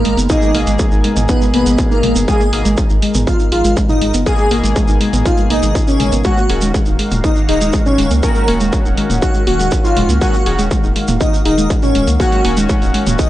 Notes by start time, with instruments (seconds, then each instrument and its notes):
Already playing: analog synth pad G#3 D#4 A#4, analog synth lead A#3, digital synth lead A#4
0.05 analog synth bass G#1, synth arpeggio sound G#3, open hi-hat
0.17 analog synth bass F#1, synth arpeggio sound B3, closed hi-hat, shekere
0.30 analog polysynth B2 A#3 G#4, synth arpeggio sound B3, analog synth lead D#4, digital synth lead D#5, kick, closed hi-hat, shekere
0.42 synth arpeggio sound G#3, shekere
0.54 analog synth bass G#1, analog polysynth B2 A#3 G#4, synth arpeggio sound A#3, open hi-hat
0.67 analog synth bass G#1, synth arpeggio sound G#3, closed hi-hat, shekere
0.79 synth arpeggio sound G#3, kick, closed hi-hat, shekere
0.92 analog synth bass G#1, synth arpeggio sound D#4, shekere
1.04 synth arpeggio sound G#3, open hi-hat
1.16 analog synth bass G#1, synth arpeggio sound B3, closed hi-hat, mid tom, shekere
1.29 analog synth lead B3, synth arpeggio sound D#4, digital synth lead B4, kick, closed hi-hat, shekere
1.41 synth arpeggio sound G#3, shekere
1.54 analog synth bass G#1, synth arpeggio sound A#3, analog synth lead B3, digital synth lead B4, open hi-hat
1.66 analog synth bass G#1, synth arpeggio sound G#3, closed hi-hat, shekere
1.78 synth arpeggio sound D#4, kick, closed hi-hat, shekere
1.91 analog synth lead A#3, synth arpeggio sound D#4, digital synth lead A#4, shekere
2.03 analog synth bass G#1, synth arpeggio sound G#3, mid tom, open hi-hat
2.16 analog synth bass F#1, synth arpeggio sound B3, closed hi-hat, shekere
2.28 analog polysynth B2 A#3 G#4, synth arpeggio sound G#3, analog synth lead G#4, digital synth lead G#5, kick, closed hi-hat, shekere
2.40 synth arpeggio sound A#3, shekere
2.53 analog synth bass G#1, analog polysynth B2 A#3 G#4, synth arpeggio sound G#4, open hi-hat
2.65 analog synth bass G#1, synth arpeggio sound G#3, closed hi-hat, shekere
2.77 synth arpeggio sound G#3, kick, closed hi-hat, shekere
2.90 analog synth bass G#1, synth arpeggio sound D#4, shekere
3.02 synth arpeggio sound G#3, open hi-hat
3.14 analog synth bass G#1, synth arpeggio sound B3, closed hi-hat, mid tom, shekere
3.27 synth arpeggio sound B3, analog synth lead F4, digital synth lead F5, kick, closed hi-hat, shekere
3.40 synth arpeggio sound D#4, shekere
3.52 analog synth bass G#1, analog synth lead F4, synth arpeggio sound G#4, digital synth lead F5, open hi-hat
3.64 analog synth bass G#1, synth arpeggio sound G#3, closed hi-hat, shekere
3.77 synth arpeggio sound G#3, kick, closed hi-hat, shekere
3.89 synth arpeggio sound D#4, analog synth lead D#4, digital synth lead D#5, mid tom, shekere
4.01 analog synth bass G#1, synth arpeggio sound G#3, open hi-hat
4.14 analog synth bass F#1, synth arpeggio sound B3, closed hi-hat, shekere
4.26 analog polysynth B2 A#3 G#4, synth arpeggio sound B3, analog synth lead G#4, digital synth lead G#5, kick, closed hi-hat, shekere
4.38 synth arpeggio sound G#3, shekere
4.51 analog synth bass G#1, analog polysynth B2 A#3 G#4, synth arpeggio sound A#3, open hi-hat
4.64 analog synth bass G#1, synth arpeggio sound G#3, closed hi-hat, shekere
4.76 synth arpeggio sound G#3, kick, closed hi-hat, shekere
4.88 analog synth bass G#1, synth arpeggio sound D#4, shekere
5.01 synth arpeggio sound G#3, open hi-hat
5.13 analog synth bass G#1, synth arpeggio sound B3, closed hi-hat, mid tom, shekere
5.25 synth arpeggio sound D#4, analog synth lead F4, digital synth lead F5, kick, closed hi-hat, shekere
5.37 synth arpeggio sound G#3, shekere
5.50 analog synth bass G#1, synth arpeggio sound A#3, analog synth lead D#4, digital synth lead D#5, open hi-hat
5.63 analog synth bass G#1, synth arpeggio sound G#3, closed hi-hat, shekere
5.75 synth arpeggio sound D#4, kick, closed hi-hat, shekere
5.87 analog synth lead C#4, synth arpeggio sound D#4, digital synth lead C#5, shekere
6.00 analog synth bass G#1, synth arpeggio sound G#3, mid tom, open hi-hat
6.12 analog synth bass G#1, synth arpeggio sound B3, closed hi-hat, shekere
6.24 analog synth pad D#3 A#3 F#4 F5, analog polysynth D#3 C#4 F#4, synth arpeggio sound G#3, analog synth lead F#4, digital synth lead F#5, kick, closed hi-hat, shekere
6.37 synth arpeggio sound A#3, shekere
6.49 analog synth bass D#1, analog polysynth D#3 C#4 F#4, synth arpeggio sound G#4, open hi-hat
6.61 analog synth bass D#1, synth arpeggio sound G#3, closed hi-hat, shekere
6.74 synth arpeggio sound G#3, kick, closed hi-hat, shekere
6.86 analog synth bass D#1, synth arpeggio sound D#4, shekere
6.99 synth arpeggio sound G#3, open hi-hat
7.11 analog synth bass D#1, synth arpeggio sound A#3, closed hi-hat, mid tom, shekere
7.24 synth arpeggio sound A#3, analog synth lead D#4, digital synth lead D#5, kick, closed hi-hat, shekere
7.36 synth arpeggio sound D#4, shekere
7.49 analog synth bass D#1, analog synth lead D#4, synth arpeggio sound G#4, digital synth lead D#5, open hi-hat
7.61 analog synth bass D#1, synth arpeggio sound G#3, closed hi-hat, shekere
7.73 synth arpeggio sound G#3, kick, closed hi-hat, shekere
7.86 analog synth lead C#4, synth arpeggio sound D#4, digital synth lead C#5, mid tom, shekere
7.98 analog synth bass D#1, synth arpeggio sound G#3, open hi-hat
8.11 analog synth bass C#2, synth arpeggio sound A#3, closed hi-hat, shekere
8.23 analog polysynth D#3 C#4 F#4, synth arpeggio sound A#3, analog synth lead A#4, digital synth lead A#5, kick, closed hi-hat, shekere
8.35 synth arpeggio sound G#3, shekere
8.48 analog synth bass D#1, analog polysynth D#3 C#4 F#4, synth arpeggio sound A#3, open hi-hat
8.60 analog synth bass D#1, synth arpeggio sound G#3, closed hi-hat, shekere
8.73 synth arpeggio sound G#3, kick, closed hi-hat, shekere
8.85 analog synth bass D#1, synth arpeggio sound D#4, shekere
8.97 synth arpeggio sound G#3, open hi-hat
9.10 analog synth bass D#1, synth arpeggio sound A#3, closed hi-hat, mid tom, shekere
9.22 synth arpeggio sound D#4, analog synth lead F#4, digital synth lead F#5, kick, closed hi-hat, shekere
9.34 synth arpeggio sound G#3, shekere
9.47 analog synth bass D#1, synth arpeggio sound A#3, analog synth lead F#4, digital synth lead F#5, open hi-hat
9.59 analog synth bass D#1, synth arpeggio sound G#3, closed hi-hat, shekere
9.71 synth arpeggio sound D#4, kick, closed hi-hat, shekere
9.84 synth arpeggio sound D#4, analog synth lead F4, digital synth lead F5, shekere
9.97 analog synth bass D#1, synth arpeggio sound G#3, mid tom, open hi-hat
10.09 analog synth bass C#2, synth arpeggio sound A#3, closed hi-hat, shekere
10.21 analog polysynth D#3 C#4 F#4, synth arpeggio sound G#3, analog synth lead F#4, digital synth lead F#5, kick, closed hi-hat, shekere
10.33 synth arpeggio sound A#3, shekere
10.46 analog synth bass D#1, analog polysynth D#3 C#4 F#4, synth arpeggio sound G#4, open hi-hat
10.59 analog synth bass D#1, synth arpeggio sound G#3, closed hi-hat, shekere
10.71 synth arpeggio sound G#3, kick, closed hi-hat, shekere
10.83 analog synth bass D#1, synth arpeggio sound D#4, shekere
10.96 synth arpeggio sound G#3, open hi-hat
11.08 analog synth bass D#1, synth arpeggio sound A#3, closed hi-hat, mid tom, shekere
11.20 synth arpeggio sound A#3, analog synth lead D#4, digital synth lead D#5, kick, closed hi-hat, shekere
11.33 synth arpeggio sound D#4, shekere
11.45 analog synth bass D#1, analog synth lead D#4, synth arpeggio sound G#4, digital synth lead D#5, open hi-hat
11.58 analog synth bass D#1, synth arpeggio sound G#3, closed hi-hat, shekere
11.70 synth arpeggio sound G#3, kick, closed hi-hat, shekere
11.82 analog synth lead C#4, synth arpeggio sound D#4, digital synth lead C#5, mid tom, shekere
11.95 analog synth bass D#1, synth arpeggio sound G#3, open hi-hat
12.07 analog synth bass C#2, synth arpeggio sound A#3, closed hi-hat, shekere
12.20 analog polysynth D#3 C#4 F#4, synth arpeggio sound A#3, analog synth lead F#4, digital synth lead F#5, kick, closed hi-hat, shekere
12.32 synth arpeggio sound G#3, closed hi-hat, shekere
12.45 analog synth bass D#1, analog polysynth D#3 C#4 F#4, synth arpeggio sound A#3, open hi-hat
12.57 analog synth bass D#1, synth arpeggio sound G#3, closed hi-hat, shekere
12.69 synth arpeggio sound G#3, kick, closed hi-hat, shekere
12.82 analog synth bass D#1, synth arpeggio sound D#4, closed hi-hat, shekere
12.94 synth arpeggio sound G#3, open hi-hat
13.07 analog synth bass D#1, synth arpeggio sound A#3, closed hi-hat, mid tom, shekere
13.19 synth arpeggio sound D#4, analog synth lead D#4, digital synth lead D#5, kick, closed hi-hat, shekere